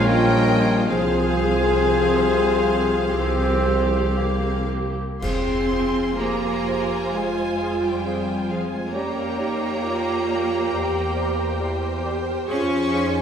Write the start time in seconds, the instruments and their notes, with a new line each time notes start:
Already playing: double bass section A#1, tuba A#1, trombone section F3 C#4, viola section C#4 F4, trumpet section F4, clarinet C#5
0.07 french horn section G3, cello section G3, flute A#4, violin section D#5 G5
0.87 double bass section C2, tuba C2, cello section F3, french horn section F3, trombone section C4, viola section C4 G#4, flute G#4, trumpet section G#4, violin section C5 F5, clarinet C5
1.98 bassoon C3
3.08 double bass section C2, tuba C2, trombone section E3, bassoon C4, viola section C4 G4, trumpet section G4
4.17 bassoon A#3
5.21 double bass section F2, bassoon F3, cello section C4, viola section F4, french horn section G#4, clarinet G#4, violin section C5 G#5 C6, flute F5, concert bass drum, crash
5.69 bassoon F3, clarinet G#4, flute F5
6.18 bassoon F3, cello section A#3, french horn section G4, clarinet G#4, flute F5, violin section A#5
6.66 bassoon F3, clarinet G#4, flute F5
7.13 bassoon F3, cello section G#3, french horn section F4, clarinet G#4, flute F5, violin section G#5
7.61 bassoon F3, clarinet G#4, flute F5
7.84 cello section G3, violin section G5
8.05 bassoon F3, french horn section C4, clarinet G#4, flute F5
8.50 cello section F3, bassoon F3, clarinet G#4, flute F5, violin section F5
8.72 cello section G#3, violin section G#5
8.92 bassoon G3, cello section A#3, french horn section C#4, viola section G4 A#4, clarinet G4, flute C#5, violin section C#5 G5 A#5
9.37 bassoon G3, french horn section D#4, clarinet G4, flute C#5
9.82 bassoon G3, french horn section F4, clarinet G4, flute C#5
10.28 bassoon G3, clarinet G4, flute C#5
10.72 double bass section E2, bassoon G3, french horn section G4, clarinet G4, violin section C5, flute C5
11.15 bassoon G3, clarinet G4, flute C5
11.60 bassoon G3, french horn section E4, clarinet G4, flute C5
12.03 bassoon G3, clarinet G4, french horn section G4, flute C5
12.48 double bass section F2, bassoon F3, cello section C#4, viola section F4 G#4, french horn section F4, clarinet G#4, flute C5, violin section G#5 C#6
12.93 bassoon F3, french horn section D#4, clarinet G#4, flute C5